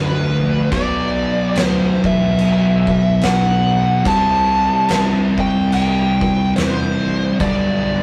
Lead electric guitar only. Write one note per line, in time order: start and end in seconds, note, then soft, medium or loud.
0.00 0.75 B4 loud
0.73 1.65 D5 loud
1.65 2.06 C5 loud
2.06 3.27 E5 loud
3.24 4.07 F#5 loud
4.07 5.35 A5 loud
5.40 5.73 G5 loud
5.74 6.53 G5 loud
6.57 7.43 C5 medium
7.41 8.03 D5 medium